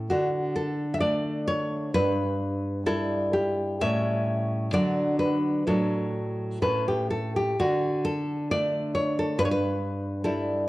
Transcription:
0.10 D3 F#4
0.55 A4
0.94 E5
1.00 A3 D4 D5
1.47 C#5
1.94 G2 B4
2.86 G3 E4 A4
3.33 G4
3.81 A2 G3 C#4 E5
4.73 D3 F#3 D4 D5
5.19 B4
5.67 A2 F#3 D4 A4
6.62 A2 A3 C#4 B4
6.88 G4
7.11 A4
7.36 G4
7.60 D3 F#4
8.05 A4
8.51 A3 D4 D5
8.95 C#5
9.19 A4
9.39 G2 B4
9.45 C#5
9.51 B4
10.24 G3 E4 A4

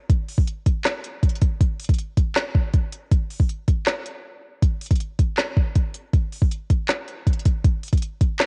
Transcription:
0.10 kick, closed hi-hat
0.29 open hi-hat
0.38 kick
0.47 closed hi-hat
0.66 kick, closed hi-hat
0.85 snare, clap, closed hi-hat
1.04 closed hi-hat
1.23 kick, closed hi-hat
1.29 closed hi-hat
1.35 closed hi-hat
1.42 kick, closed hi-hat
1.61 kick, closed hi-hat
1.80 closed hi-hat, open hi-hat
1.84 closed hi-hat
1.89 kick, closed hi-hat
1.94 closed hi-hat
1.98 closed hi-hat
2.17 kick, closed hi-hat
2.36 snare, clap, closed hi-hat
2.55 kick
2.74 kick, closed hi-hat
2.92 closed hi-hat
3.12 kick, closed hi-hat
3.30 open hi-hat
3.40 kick
3.49 closed hi-hat
3.68 kick, closed hi-hat
3.87 snare, clap, closed hi-hat
4.06 closed hi-hat
4.62 kick, closed hi-hat
4.81 closed hi-hat, open hi-hat
4.86 closed hi-hat
4.91 kick, closed hi-hat
4.96 closed hi-hat
5.00 closed hi-hat
5.19 kick, closed hi-hat
5.38 snare, clap, closed hi-hat
5.57 kick
5.75 kick, closed hi-hat
5.94 closed hi-hat
6.13 kick, closed hi-hat
6.32 open hi-hat
6.42 kick
6.51 closed hi-hat
6.70 kick, closed hi-hat
6.89 snare, clap, closed hi-hat
7.08 closed hi-hat
7.27 kick, closed hi-hat
7.33 closed hi-hat
7.39 closed hi-hat
7.45 kick, closed hi-hat
7.64 kick, closed hi-hat
7.83 closed hi-hat, open hi-hat
7.88 closed hi-hat
7.93 kick, closed hi-hat
7.97 closed hi-hat
8.02 closed hi-hat
8.21 kick, closed hi-hat
8.40 snare, clap, closed hi-hat

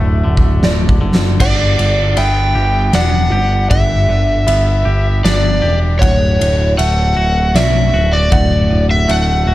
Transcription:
Already playing: D1 D2 D3 A3 E5
0.24 D1 D3
0.37 kick
0.63 D1 D5, snare
0.89 kick
1.01 F#1 D3
1.15 snare
1.40 G1 G2 D5 F#5, kick, crash
1.79 G1 D3, ride
2.17 G1 B3 E5 G5, ride
2.55 G1 G4
2.93 E1 D4 D5 F#5, snare, ride
3.32 G1 G4
3.70 G1 G2 E5 F#5, kick, ride
4.09 G1 D3
4.47 G1 B3 E5, ride
4.85 G1 G4
5.24 G1 D4 D5, snare, ride
5.62 E1 G4
5.99 D1 D2 C#5 F#5, kick, ride
6.39 D1 A2, ride
6.78 D1 A3 E5 F#5, ride
7.17 D1 F#4
7.55 B1 D5 E5, snare, ride
7.94 D1 F#4
8.13 D5
8.32 D1 D2 F#5, kick, ride
8.70 D1 A2
8.91 E5
9.08 D1 A3 E5 F#5, ride
9.47 D1 F#4

